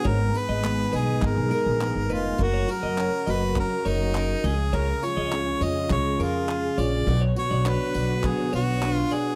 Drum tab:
TB |-x-x-x-x|-x-x-x-x|-x-x-x-x|-x-x-x-x|
CP |--x-x-x-|--x-x-x-|--x-x-x-|--x-x-x-|
BD |o---o---|o---o---|o---o---|o---o---|